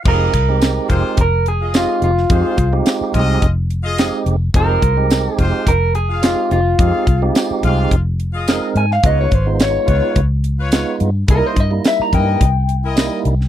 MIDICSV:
0, 0, Header, 1, 7, 480
1, 0, Start_track
1, 0, Key_signature, -4, "minor"
1, 0, Tempo, 561798
1, 46, Time_signature, 4, 2, 24, 8
1, 11520, End_track
2, 0, Start_track
2, 0, Title_t, "Clean electric guitar"
2, 0, Program_c, 0, 27
2, 68, Note_on_c, 0, 70, 95
2, 989, Note_off_c, 0, 70, 0
2, 1033, Note_on_c, 0, 70, 77
2, 1253, Note_off_c, 0, 70, 0
2, 1268, Note_on_c, 0, 68, 74
2, 1490, Note_off_c, 0, 68, 0
2, 1508, Note_on_c, 0, 65, 73
2, 1730, Note_off_c, 0, 65, 0
2, 1743, Note_on_c, 0, 65, 73
2, 2666, Note_off_c, 0, 65, 0
2, 3899, Note_on_c, 0, 70, 103
2, 4565, Note_off_c, 0, 70, 0
2, 4565, Note_on_c, 0, 68, 103
2, 4823, Note_off_c, 0, 68, 0
2, 4856, Note_on_c, 0, 70, 81
2, 5083, Note_off_c, 0, 70, 0
2, 5086, Note_on_c, 0, 68, 83
2, 5318, Note_off_c, 0, 68, 0
2, 5323, Note_on_c, 0, 65, 78
2, 5557, Note_off_c, 0, 65, 0
2, 5574, Note_on_c, 0, 65, 86
2, 6500, Note_off_c, 0, 65, 0
2, 7497, Note_on_c, 0, 80, 73
2, 7611, Note_off_c, 0, 80, 0
2, 7628, Note_on_c, 0, 77, 71
2, 7730, Note_off_c, 0, 77, 0
2, 7741, Note_on_c, 0, 75, 77
2, 7853, Note_off_c, 0, 75, 0
2, 7868, Note_on_c, 0, 73, 65
2, 7985, Note_off_c, 0, 73, 0
2, 7985, Note_on_c, 0, 72, 77
2, 8208, Note_off_c, 0, 72, 0
2, 8223, Note_on_c, 0, 73, 96
2, 8680, Note_off_c, 0, 73, 0
2, 9659, Note_on_c, 0, 70, 91
2, 9794, Note_off_c, 0, 70, 0
2, 9794, Note_on_c, 0, 72, 69
2, 9913, Note_off_c, 0, 72, 0
2, 9913, Note_on_c, 0, 75, 80
2, 10132, Note_off_c, 0, 75, 0
2, 10147, Note_on_c, 0, 76, 85
2, 10257, Note_off_c, 0, 76, 0
2, 10267, Note_on_c, 0, 82, 77
2, 10370, Note_off_c, 0, 82, 0
2, 10377, Note_on_c, 0, 79, 90
2, 11520, Note_off_c, 0, 79, 0
2, 11520, End_track
3, 0, Start_track
3, 0, Title_t, "Horn section"
3, 0, Program_c, 1, 61
3, 33, Note_on_c, 1, 65, 71
3, 39, Note_on_c, 1, 68, 64
3, 49, Note_on_c, 1, 75, 72
3, 404, Note_off_c, 1, 65, 0
3, 408, Note_off_c, 1, 68, 0
3, 413, Note_off_c, 1, 75, 0
3, 746, Note_on_c, 1, 65, 80
3, 750, Note_on_c, 1, 56, 77
3, 763, Note_on_c, 1, 72, 83
3, 1058, Note_off_c, 1, 65, 0
3, 1061, Note_off_c, 1, 56, 0
3, 1067, Note_off_c, 1, 72, 0
3, 1373, Note_on_c, 1, 65, 62
3, 1375, Note_on_c, 1, 68, 63
3, 1382, Note_on_c, 1, 75, 76
3, 1670, Note_off_c, 1, 65, 0
3, 1671, Note_off_c, 1, 68, 0
3, 1674, Note_off_c, 1, 75, 0
3, 1957, Note_on_c, 1, 65, 68
3, 1968, Note_on_c, 1, 68, 62
3, 1973, Note_on_c, 1, 72, 77
3, 2326, Note_off_c, 1, 65, 0
3, 2331, Note_off_c, 1, 68, 0
3, 2334, Note_off_c, 1, 72, 0
3, 2678, Note_on_c, 1, 65, 85
3, 2684, Note_on_c, 1, 56, 76
3, 2696, Note_on_c, 1, 75, 93
3, 2984, Note_off_c, 1, 65, 0
3, 2987, Note_off_c, 1, 56, 0
3, 2993, Note_off_c, 1, 75, 0
3, 3275, Note_on_c, 1, 65, 78
3, 3284, Note_on_c, 1, 68, 72
3, 3285, Note_on_c, 1, 75, 94
3, 3580, Note_off_c, 1, 65, 0
3, 3585, Note_off_c, 1, 68, 0
3, 3585, Note_off_c, 1, 75, 0
3, 3884, Note_on_c, 1, 65, 74
3, 3888, Note_on_c, 1, 68, 60
3, 3898, Note_on_c, 1, 72, 69
3, 4249, Note_off_c, 1, 65, 0
3, 4251, Note_off_c, 1, 68, 0
3, 4256, Note_off_c, 1, 72, 0
3, 4601, Note_on_c, 1, 65, 86
3, 4606, Note_on_c, 1, 56, 73
3, 4608, Note_on_c, 1, 72, 95
3, 4905, Note_off_c, 1, 65, 0
3, 4907, Note_off_c, 1, 56, 0
3, 4908, Note_off_c, 1, 72, 0
3, 5198, Note_on_c, 1, 65, 67
3, 5206, Note_on_c, 1, 68, 62
3, 5214, Note_on_c, 1, 77, 74
3, 5501, Note_off_c, 1, 65, 0
3, 5505, Note_off_c, 1, 68, 0
3, 5509, Note_off_c, 1, 77, 0
3, 5793, Note_on_c, 1, 65, 67
3, 5803, Note_on_c, 1, 68, 62
3, 5804, Note_on_c, 1, 77, 75
3, 6163, Note_off_c, 1, 65, 0
3, 6168, Note_off_c, 1, 68, 0
3, 6168, Note_off_c, 1, 77, 0
3, 6519, Note_on_c, 1, 65, 88
3, 6525, Note_on_c, 1, 56, 74
3, 6533, Note_on_c, 1, 77, 91
3, 6824, Note_off_c, 1, 65, 0
3, 6827, Note_off_c, 1, 56, 0
3, 6831, Note_off_c, 1, 77, 0
3, 7122, Note_on_c, 1, 65, 80
3, 7131, Note_on_c, 1, 68, 67
3, 7136, Note_on_c, 1, 75, 88
3, 7423, Note_off_c, 1, 65, 0
3, 7427, Note_off_c, 1, 68, 0
3, 7430, Note_off_c, 1, 75, 0
3, 7717, Note_on_c, 1, 65, 66
3, 7725, Note_on_c, 1, 71, 66
3, 7732, Note_on_c, 1, 73, 68
3, 8085, Note_off_c, 1, 65, 0
3, 8089, Note_off_c, 1, 71, 0
3, 8092, Note_off_c, 1, 73, 0
3, 8423, Note_on_c, 1, 65, 76
3, 8434, Note_on_c, 1, 71, 62
3, 8441, Note_on_c, 1, 73, 80
3, 8736, Note_off_c, 1, 65, 0
3, 8741, Note_off_c, 1, 71, 0
3, 8745, Note_off_c, 1, 73, 0
3, 9047, Note_on_c, 1, 65, 77
3, 9050, Note_on_c, 1, 71, 69
3, 9064, Note_on_c, 1, 73, 87
3, 9346, Note_off_c, 1, 65, 0
3, 9347, Note_off_c, 1, 71, 0
3, 9354, Note_off_c, 1, 73, 0
3, 9639, Note_on_c, 1, 64, 72
3, 9650, Note_on_c, 1, 70, 60
3, 9659, Note_on_c, 1, 75, 80
3, 10007, Note_off_c, 1, 64, 0
3, 10012, Note_off_c, 1, 70, 0
3, 10017, Note_off_c, 1, 75, 0
3, 10361, Note_on_c, 1, 52, 77
3, 10366, Note_on_c, 1, 70, 65
3, 10377, Note_on_c, 1, 75, 77
3, 10666, Note_off_c, 1, 52, 0
3, 10668, Note_off_c, 1, 70, 0
3, 10674, Note_off_c, 1, 75, 0
3, 10965, Note_on_c, 1, 64, 76
3, 10972, Note_on_c, 1, 70, 74
3, 10979, Note_on_c, 1, 75, 85
3, 11266, Note_off_c, 1, 64, 0
3, 11269, Note_off_c, 1, 70, 0
3, 11273, Note_off_c, 1, 75, 0
3, 11520, End_track
4, 0, Start_track
4, 0, Title_t, "Tonewheel organ"
4, 0, Program_c, 2, 16
4, 44, Note_on_c, 2, 56, 64
4, 46, Note_on_c, 2, 60, 63
4, 48, Note_on_c, 2, 63, 61
4, 48, Note_on_c, 2, 67, 77
4, 284, Note_off_c, 2, 56, 0
4, 285, Note_off_c, 2, 60, 0
4, 286, Note_off_c, 2, 63, 0
4, 286, Note_off_c, 2, 67, 0
4, 414, Note_on_c, 2, 56, 70
4, 415, Note_on_c, 2, 60, 62
4, 417, Note_on_c, 2, 63, 65
4, 418, Note_on_c, 2, 67, 70
4, 1046, Note_off_c, 2, 56, 0
4, 1047, Note_off_c, 2, 60, 0
4, 1048, Note_off_c, 2, 63, 0
4, 1048, Note_off_c, 2, 67, 0
4, 1485, Note_on_c, 2, 56, 65
4, 1488, Note_on_c, 2, 60, 59
4, 1488, Note_on_c, 2, 63, 58
4, 1492, Note_on_c, 2, 67, 73
4, 1807, Note_off_c, 2, 56, 0
4, 1808, Note_off_c, 2, 60, 0
4, 1809, Note_off_c, 2, 63, 0
4, 1811, Note_off_c, 2, 67, 0
4, 1968, Note_on_c, 2, 56, 68
4, 1973, Note_on_c, 2, 60, 59
4, 1973, Note_on_c, 2, 63, 59
4, 1975, Note_on_c, 2, 67, 73
4, 2206, Note_off_c, 2, 56, 0
4, 2208, Note_off_c, 2, 60, 0
4, 2208, Note_off_c, 2, 63, 0
4, 2209, Note_off_c, 2, 67, 0
4, 2329, Note_on_c, 2, 56, 77
4, 2330, Note_on_c, 2, 60, 74
4, 2332, Note_on_c, 2, 63, 74
4, 2334, Note_on_c, 2, 67, 88
4, 2963, Note_off_c, 2, 56, 0
4, 2963, Note_off_c, 2, 60, 0
4, 2965, Note_off_c, 2, 63, 0
4, 2966, Note_off_c, 2, 67, 0
4, 3404, Note_on_c, 2, 56, 78
4, 3406, Note_on_c, 2, 60, 72
4, 3408, Note_on_c, 2, 63, 75
4, 3409, Note_on_c, 2, 67, 83
4, 3726, Note_off_c, 2, 56, 0
4, 3727, Note_off_c, 2, 60, 0
4, 3728, Note_off_c, 2, 63, 0
4, 3729, Note_off_c, 2, 67, 0
4, 3884, Note_on_c, 2, 56, 68
4, 3886, Note_on_c, 2, 60, 64
4, 3890, Note_on_c, 2, 63, 61
4, 3891, Note_on_c, 2, 67, 72
4, 4123, Note_off_c, 2, 56, 0
4, 4124, Note_off_c, 2, 60, 0
4, 4126, Note_off_c, 2, 63, 0
4, 4126, Note_off_c, 2, 67, 0
4, 4244, Note_on_c, 2, 56, 69
4, 4248, Note_on_c, 2, 60, 66
4, 4249, Note_on_c, 2, 63, 57
4, 4250, Note_on_c, 2, 67, 73
4, 4880, Note_off_c, 2, 56, 0
4, 4882, Note_off_c, 2, 60, 0
4, 4883, Note_off_c, 2, 63, 0
4, 4883, Note_off_c, 2, 67, 0
4, 5316, Note_on_c, 2, 60, 58
4, 5318, Note_on_c, 2, 56, 69
4, 5322, Note_on_c, 2, 63, 61
4, 5324, Note_on_c, 2, 67, 73
4, 5641, Note_off_c, 2, 60, 0
4, 5642, Note_off_c, 2, 56, 0
4, 5645, Note_off_c, 2, 63, 0
4, 5645, Note_off_c, 2, 67, 0
4, 5798, Note_on_c, 2, 56, 68
4, 5802, Note_on_c, 2, 60, 66
4, 5803, Note_on_c, 2, 67, 72
4, 5805, Note_on_c, 2, 63, 61
4, 6040, Note_off_c, 2, 56, 0
4, 6042, Note_off_c, 2, 60, 0
4, 6042, Note_off_c, 2, 67, 0
4, 6043, Note_off_c, 2, 63, 0
4, 6170, Note_on_c, 2, 56, 79
4, 6170, Note_on_c, 2, 63, 67
4, 6172, Note_on_c, 2, 60, 73
4, 6174, Note_on_c, 2, 67, 89
4, 6803, Note_off_c, 2, 56, 0
4, 6803, Note_off_c, 2, 63, 0
4, 6804, Note_off_c, 2, 60, 0
4, 6805, Note_off_c, 2, 67, 0
4, 7248, Note_on_c, 2, 56, 80
4, 7248, Note_on_c, 2, 60, 68
4, 7251, Note_on_c, 2, 63, 70
4, 7253, Note_on_c, 2, 70, 84
4, 7567, Note_off_c, 2, 56, 0
4, 7567, Note_off_c, 2, 60, 0
4, 7569, Note_off_c, 2, 63, 0
4, 7570, Note_off_c, 2, 70, 0
4, 7718, Note_on_c, 2, 56, 64
4, 7721, Note_on_c, 2, 59, 63
4, 7723, Note_on_c, 2, 63, 61
4, 7726, Note_on_c, 2, 65, 77
4, 7960, Note_off_c, 2, 56, 0
4, 7961, Note_off_c, 2, 59, 0
4, 7962, Note_off_c, 2, 63, 0
4, 7964, Note_off_c, 2, 65, 0
4, 8083, Note_on_c, 2, 56, 63
4, 8085, Note_on_c, 2, 59, 66
4, 8086, Note_on_c, 2, 63, 62
4, 8090, Note_on_c, 2, 65, 78
4, 8719, Note_off_c, 2, 56, 0
4, 8721, Note_off_c, 2, 59, 0
4, 8721, Note_off_c, 2, 63, 0
4, 8723, Note_off_c, 2, 65, 0
4, 9163, Note_on_c, 2, 59, 73
4, 9164, Note_on_c, 2, 56, 78
4, 9166, Note_on_c, 2, 63, 67
4, 9167, Note_on_c, 2, 65, 83
4, 9485, Note_off_c, 2, 56, 0
4, 9485, Note_off_c, 2, 59, 0
4, 9487, Note_off_c, 2, 63, 0
4, 9487, Note_off_c, 2, 65, 0
4, 9635, Note_on_c, 2, 55, 70
4, 9640, Note_on_c, 2, 58, 65
4, 9641, Note_on_c, 2, 63, 61
4, 9641, Note_on_c, 2, 64, 72
4, 9879, Note_off_c, 2, 55, 0
4, 9881, Note_off_c, 2, 58, 0
4, 9882, Note_off_c, 2, 63, 0
4, 9882, Note_off_c, 2, 64, 0
4, 10000, Note_on_c, 2, 55, 67
4, 10004, Note_on_c, 2, 58, 57
4, 10004, Note_on_c, 2, 64, 77
4, 10007, Note_on_c, 2, 63, 58
4, 10639, Note_off_c, 2, 55, 0
4, 10641, Note_off_c, 2, 58, 0
4, 10641, Note_off_c, 2, 64, 0
4, 10643, Note_off_c, 2, 63, 0
4, 11071, Note_on_c, 2, 55, 79
4, 11074, Note_on_c, 2, 58, 78
4, 11076, Note_on_c, 2, 63, 72
4, 11076, Note_on_c, 2, 64, 91
4, 11401, Note_off_c, 2, 55, 0
4, 11402, Note_off_c, 2, 58, 0
4, 11403, Note_off_c, 2, 63, 0
4, 11403, Note_off_c, 2, 64, 0
4, 11520, End_track
5, 0, Start_track
5, 0, Title_t, "Fingered electric bass"
5, 0, Program_c, 3, 33
5, 46, Note_on_c, 3, 29, 98
5, 238, Note_off_c, 3, 29, 0
5, 285, Note_on_c, 3, 36, 81
5, 668, Note_off_c, 3, 36, 0
5, 767, Note_on_c, 3, 29, 85
5, 866, Note_off_c, 3, 29, 0
5, 1007, Note_on_c, 3, 29, 88
5, 1581, Note_off_c, 3, 29, 0
5, 1726, Note_on_c, 3, 29, 80
5, 1917, Note_off_c, 3, 29, 0
5, 1966, Note_on_c, 3, 41, 92
5, 2065, Note_off_c, 3, 41, 0
5, 2203, Note_on_c, 3, 36, 88
5, 2396, Note_off_c, 3, 36, 0
5, 2682, Note_on_c, 3, 36, 91
5, 2875, Note_off_c, 3, 36, 0
5, 2923, Note_on_c, 3, 29, 90
5, 3498, Note_off_c, 3, 29, 0
5, 3641, Note_on_c, 3, 29, 89
5, 3834, Note_off_c, 3, 29, 0
5, 3881, Note_on_c, 3, 29, 101
5, 4074, Note_off_c, 3, 29, 0
5, 4122, Note_on_c, 3, 36, 83
5, 4506, Note_off_c, 3, 36, 0
5, 4601, Note_on_c, 3, 29, 93
5, 4702, Note_off_c, 3, 29, 0
5, 4842, Note_on_c, 3, 29, 87
5, 5417, Note_off_c, 3, 29, 0
5, 5566, Note_on_c, 3, 29, 83
5, 5756, Note_off_c, 3, 29, 0
5, 5804, Note_on_c, 3, 41, 95
5, 5903, Note_off_c, 3, 41, 0
5, 6043, Note_on_c, 3, 36, 82
5, 6235, Note_off_c, 3, 36, 0
5, 6520, Note_on_c, 3, 36, 90
5, 6713, Note_off_c, 3, 36, 0
5, 6760, Note_on_c, 3, 29, 80
5, 7336, Note_off_c, 3, 29, 0
5, 7480, Note_on_c, 3, 44, 92
5, 7673, Note_off_c, 3, 44, 0
5, 7721, Note_on_c, 3, 37, 95
5, 7914, Note_off_c, 3, 37, 0
5, 7964, Note_on_c, 3, 32, 86
5, 8347, Note_off_c, 3, 32, 0
5, 8443, Note_on_c, 3, 37, 82
5, 8543, Note_off_c, 3, 37, 0
5, 8681, Note_on_c, 3, 37, 91
5, 9257, Note_off_c, 3, 37, 0
5, 9405, Note_on_c, 3, 43, 85
5, 9596, Note_off_c, 3, 43, 0
5, 9643, Note_on_c, 3, 36, 94
5, 9743, Note_off_c, 3, 36, 0
5, 9878, Note_on_c, 3, 43, 83
5, 10073, Note_off_c, 3, 43, 0
5, 10363, Note_on_c, 3, 43, 88
5, 10555, Note_off_c, 3, 43, 0
5, 10605, Note_on_c, 3, 36, 92
5, 11181, Note_off_c, 3, 36, 0
5, 11324, Note_on_c, 3, 36, 90
5, 11517, Note_off_c, 3, 36, 0
5, 11520, End_track
6, 0, Start_track
6, 0, Title_t, "Muted fingered electric bass strokes"
6, 2572, Note_on_c, 9, 29, 34
6, 2657, Note_off_c, 9, 29, 0
6, 6414, Note_on_c, 9, 29, 34
6, 6499, Note_off_c, 9, 29, 0
6, 10250, Note_on_c, 9, 29, 36
6, 10335, Note_off_c, 9, 29, 0
6, 11520, End_track
7, 0, Start_track
7, 0, Title_t, "Drums"
7, 46, Note_on_c, 9, 49, 90
7, 47, Note_on_c, 9, 36, 108
7, 131, Note_off_c, 9, 49, 0
7, 133, Note_off_c, 9, 36, 0
7, 286, Note_on_c, 9, 42, 59
7, 287, Note_on_c, 9, 36, 80
7, 372, Note_off_c, 9, 36, 0
7, 372, Note_off_c, 9, 42, 0
7, 526, Note_on_c, 9, 42, 77
7, 526, Note_on_c, 9, 54, 101
7, 534, Note_on_c, 9, 38, 99
7, 611, Note_off_c, 9, 42, 0
7, 611, Note_off_c, 9, 54, 0
7, 620, Note_off_c, 9, 38, 0
7, 766, Note_on_c, 9, 36, 67
7, 766, Note_on_c, 9, 42, 51
7, 851, Note_off_c, 9, 36, 0
7, 851, Note_off_c, 9, 42, 0
7, 1002, Note_on_c, 9, 42, 83
7, 1005, Note_on_c, 9, 36, 79
7, 1087, Note_off_c, 9, 42, 0
7, 1091, Note_off_c, 9, 36, 0
7, 1247, Note_on_c, 9, 42, 59
7, 1332, Note_off_c, 9, 42, 0
7, 1486, Note_on_c, 9, 42, 77
7, 1486, Note_on_c, 9, 54, 93
7, 1495, Note_on_c, 9, 38, 102
7, 1571, Note_off_c, 9, 42, 0
7, 1571, Note_off_c, 9, 54, 0
7, 1580, Note_off_c, 9, 38, 0
7, 1726, Note_on_c, 9, 42, 60
7, 1812, Note_off_c, 9, 42, 0
7, 1858, Note_on_c, 9, 38, 27
7, 1944, Note_off_c, 9, 38, 0
7, 1962, Note_on_c, 9, 42, 76
7, 1964, Note_on_c, 9, 36, 99
7, 2048, Note_off_c, 9, 42, 0
7, 2050, Note_off_c, 9, 36, 0
7, 2201, Note_on_c, 9, 42, 54
7, 2204, Note_on_c, 9, 36, 76
7, 2287, Note_off_c, 9, 42, 0
7, 2289, Note_off_c, 9, 36, 0
7, 2442, Note_on_c, 9, 42, 81
7, 2442, Note_on_c, 9, 54, 101
7, 2450, Note_on_c, 9, 38, 101
7, 2527, Note_off_c, 9, 42, 0
7, 2527, Note_off_c, 9, 54, 0
7, 2536, Note_off_c, 9, 38, 0
7, 2684, Note_on_c, 9, 36, 67
7, 2684, Note_on_c, 9, 42, 53
7, 2769, Note_off_c, 9, 42, 0
7, 2770, Note_off_c, 9, 36, 0
7, 2923, Note_on_c, 9, 36, 83
7, 2923, Note_on_c, 9, 42, 72
7, 3008, Note_off_c, 9, 42, 0
7, 3009, Note_off_c, 9, 36, 0
7, 3165, Note_on_c, 9, 42, 56
7, 3250, Note_off_c, 9, 42, 0
7, 3403, Note_on_c, 9, 42, 74
7, 3403, Note_on_c, 9, 54, 99
7, 3411, Note_on_c, 9, 38, 99
7, 3488, Note_off_c, 9, 42, 0
7, 3488, Note_off_c, 9, 54, 0
7, 3497, Note_off_c, 9, 38, 0
7, 3642, Note_on_c, 9, 42, 60
7, 3728, Note_off_c, 9, 42, 0
7, 3880, Note_on_c, 9, 42, 81
7, 3881, Note_on_c, 9, 36, 107
7, 3965, Note_off_c, 9, 42, 0
7, 3966, Note_off_c, 9, 36, 0
7, 4122, Note_on_c, 9, 36, 82
7, 4123, Note_on_c, 9, 42, 58
7, 4207, Note_off_c, 9, 36, 0
7, 4209, Note_off_c, 9, 42, 0
7, 4362, Note_on_c, 9, 42, 84
7, 4362, Note_on_c, 9, 54, 105
7, 4370, Note_on_c, 9, 38, 99
7, 4447, Note_off_c, 9, 42, 0
7, 4447, Note_off_c, 9, 54, 0
7, 4456, Note_off_c, 9, 38, 0
7, 4602, Note_on_c, 9, 36, 68
7, 4602, Note_on_c, 9, 42, 52
7, 4687, Note_off_c, 9, 36, 0
7, 4687, Note_off_c, 9, 42, 0
7, 4841, Note_on_c, 9, 36, 80
7, 4844, Note_on_c, 9, 42, 86
7, 4927, Note_off_c, 9, 36, 0
7, 4930, Note_off_c, 9, 42, 0
7, 5082, Note_on_c, 9, 42, 55
7, 5167, Note_off_c, 9, 42, 0
7, 5321, Note_on_c, 9, 42, 77
7, 5321, Note_on_c, 9, 54, 94
7, 5329, Note_on_c, 9, 38, 103
7, 5406, Note_off_c, 9, 42, 0
7, 5406, Note_off_c, 9, 54, 0
7, 5415, Note_off_c, 9, 38, 0
7, 5563, Note_on_c, 9, 42, 59
7, 5649, Note_off_c, 9, 42, 0
7, 5800, Note_on_c, 9, 36, 107
7, 5801, Note_on_c, 9, 42, 81
7, 5886, Note_off_c, 9, 36, 0
7, 5887, Note_off_c, 9, 42, 0
7, 6040, Note_on_c, 9, 36, 77
7, 6041, Note_on_c, 9, 42, 63
7, 6126, Note_off_c, 9, 36, 0
7, 6126, Note_off_c, 9, 42, 0
7, 6281, Note_on_c, 9, 42, 86
7, 6281, Note_on_c, 9, 54, 107
7, 6290, Note_on_c, 9, 38, 105
7, 6367, Note_off_c, 9, 42, 0
7, 6367, Note_off_c, 9, 54, 0
7, 6375, Note_off_c, 9, 38, 0
7, 6521, Note_on_c, 9, 36, 63
7, 6521, Note_on_c, 9, 42, 52
7, 6607, Note_off_c, 9, 36, 0
7, 6607, Note_off_c, 9, 42, 0
7, 6761, Note_on_c, 9, 36, 77
7, 6762, Note_on_c, 9, 42, 77
7, 6846, Note_off_c, 9, 36, 0
7, 6847, Note_off_c, 9, 42, 0
7, 7003, Note_on_c, 9, 42, 53
7, 7089, Note_off_c, 9, 42, 0
7, 7242, Note_on_c, 9, 42, 69
7, 7242, Note_on_c, 9, 54, 107
7, 7251, Note_on_c, 9, 38, 91
7, 7328, Note_off_c, 9, 42, 0
7, 7328, Note_off_c, 9, 54, 0
7, 7336, Note_off_c, 9, 38, 0
7, 7481, Note_on_c, 9, 42, 52
7, 7567, Note_off_c, 9, 42, 0
7, 7615, Note_on_c, 9, 38, 29
7, 7700, Note_off_c, 9, 38, 0
7, 7718, Note_on_c, 9, 42, 76
7, 7720, Note_on_c, 9, 36, 106
7, 7803, Note_off_c, 9, 42, 0
7, 7806, Note_off_c, 9, 36, 0
7, 7958, Note_on_c, 9, 42, 56
7, 7961, Note_on_c, 9, 36, 85
7, 8043, Note_off_c, 9, 42, 0
7, 8046, Note_off_c, 9, 36, 0
7, 8198, Note_on_c, 9, 42, 81
7, 8198, Note_on_c, 9, 54, 106
7, 8207, Note_on_c, 9, 38, 112
7, 8284, Note_off_c, 9, 42, 0
7, 8284, Note_off_c, 9, 54, 0
7, 8292, Note_off_c, 9, 38, 0
7, 8440, Note_on_c, 9, 42, 49
7, 8441, Note_on_c, 9, 36, 68
7, 8525, Note_off_c, 9, 42, 0
7, 8526, Note_off_c, 9, 36, 0
7, 8678, Note_on_c, 9, 42, 74
7, 8681, Note_on_c, 9, 36, 77
7, 8763, Note_off_c, 9, 42, 0
7, 8766, Note_off_c, 9, 36, 0
7, 8919, Note_on_c, 9, 42, 63
7, 9005, Note_off_c, 9, 42, 0
7, 9157, Note_on_c, 9, 42, 85
7, 9157, Note_on_c, 9, 54, 99
7, 9166, Note_on_c, 9, 38, 103
7, 9242, Note_off_c, 9, 42, 0
7, 9242, Note_off_c, 9, 54, 0
7, 9251, Note_off_c, 9, 38, 0
7, 9400, Note_on_c, 9, 42, 64
7, 9485, Note_off_c, 9, 42, 0
7, 9639, Note_on_c, 9, 42, 85
7, 9641, Note_on_c, 9, 36, 106
7, 9725, Note_off_c, 9, 42, 0
7, 9726, Note_off_c, 9, 36, 0
7, 9880, Note_on_c, 9, 42, 61
7, 9881, Note_on_c, 9, 36, 81
7, 9966, Note_off_c, 9, 36, 0
7, 9966, Note_off_c, 9, 42, 0
7, 10120, Note_on_c, 9, 42, 84
7, 10120, Note_on_c, 9, 54, 108
7, 10129, Note_on_c, 9, 38, 107
7, 10206, Note_off_c, 9, 42, 0
7, 10206, Note_off_c, 9, 54, 0
7, 10214, Note_off_c, 9, 38, 0
7, 10362, Note_on_c, 9, 36, 69
7, 10362, Note_on_c, 9, 42, 53
7, 10447, Note_off_c, 9, 36, 0
7, 10447, Note_off_c, 9, 42, 0
7, 10601, Note_on_c, 9, 42, 82
7, 10602, Note_on_c, 9, 36, 79
7, 10687, Note_off_c, 9, 36, 0
7, 10687, Note_off_c, 9, 42, 0
7, 10841, Note_on_c, 9, 42, 57
7, 10926, Note_off_c, 9, 42, 0
7, 11079, Note_on_c, 9, 42, 75
7, 11079, Note_on_c, 9, 54, 98
7, 11088, Note_on_c, 9, 38, 98
7, 11165, Note_off_c, 9, 42, 0
7, 11165, Note_off_c, 9, 54, 0
7, 11173, Note_off_c, 9, 38, 0
7, 11323, Note_on_c, 9, 42, 56
7, 11409, Note_off_c, 9, 42, 0
7, 11456, Note_on_c, 9, 38, 30
7, 11520, Note_off_c, 9, 38, 0
7, 11520, End_track
0, 0, End_of_file